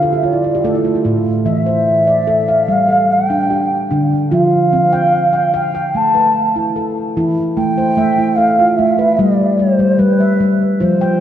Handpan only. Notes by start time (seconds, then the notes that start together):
Already playing: D3 G4
0.03 A4
0.13 G4
0.23 F4
0.33 E4
0.44 F4
0.55 G4
0.64 A3 F4 A4
0.75 E4
0.84 F4
0.95 E4
1.05 A2 A3
1.45 E3 E5
1.66 C5
2.07 D5
2.27 A4
2.48 F5
2.68 G3
2.89 A4
3.30 D4
3.50 G4
3.91 D3 D4
4.31 F3 F4
4.73 C4
4.93 G5
5.33 G5
5.54 F5
5.75 G5
5.95 A3
6.15 B4
6.56 E4
6.76 A4
7.17 E3 E4
7.57 A3
7.78 C5
7.97 A3 E5
8.18 E4
8.38 A4
8.59 F4
8.79 A3
8.99 B4
9.19 G3
9.59 G4
9.79 G3
9.99 G3
10.20 E5
10.40 G3
10.80 F3 F4
11.01 G5